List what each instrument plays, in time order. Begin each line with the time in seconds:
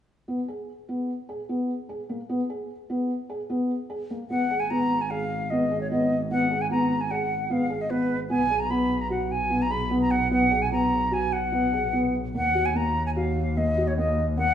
0.28 felt piano B3
0.48 felt piano G#4
0.89 felt piano B3
1.29 felt piano G#4
1.49 felt piano B3
1.89 felt piano G#4
2.09 felt piano A#3
2.29 felt piano B3
2.50 felt piano G#4
2.90 felt piano B3
3.29 felt piano G#4
3.50 felt piano B3
3.90 felt piano G#4
4.10 felt piano A#3
4.29 double bass G#1, felt piano B3, flute F#5
4.51 felt piano G#4
4.60 flute G#5
4.70 felt piano B3, flute A#5
5.01 flute G#5
5.10 felt piano G#4, flute F5
5.50 felt piano B3, flute D#5
5.71 felt piano G#4
5.81 flute C#5
5.91 felt piano B3, flute D#5
6.31 felt piano B3, flute F#5
6.51 felt piano G#4
6.61 flute G#5
6.71 felt piano B3, flute A#5
7.01 flute G#5
7.11 felt piano G#4, flute F#5
7.50 felt piano B3, flute F5
7.70 felt piano G#4
7.81 flute D#5
7.90 felt piano B3, flute B4
8.29 double bass B1, felt piano B3, flute G#5
8.50 felt piano G#4
8.60 flute A#5
8.70 felt piano B3, flute B5
9.01 flute A#5
9.10 felt piano F#4, flute F#5
9.31 flute G#5
9.50 felt piano B3
9.62 flute A#5
9.70 felt piano G#4, flute B5
9.91 felt piano B3
10.02 flute A#5
10.11 flute F#5
10.31 felt piano B3, flute F#5
10.51 felt piano G#4
10.62 flute G#5
10.71 felt piano B3, flute A#5
11.11 felt piano F#4, flute G#5
11.33 flute F#5
11.52 felt piano B3
11.73 felt piano G#4
11.93 felt piano B3
12.33 double bass D#2, felt piano A#3, flute F#5
12.55 felt piano F#4
12.66 flute G#5
12.75 felt piano A#3, flute A#5
13.06 flute G#5
13.16 felt piano F#4, flute F5
13.57 felt piano A#3, flute D#5
13.78 felt piano F#4
13.88 flute C#5
13.97 felt piano A#3, flute D#5
14.37 felt piano A#3, flute F#5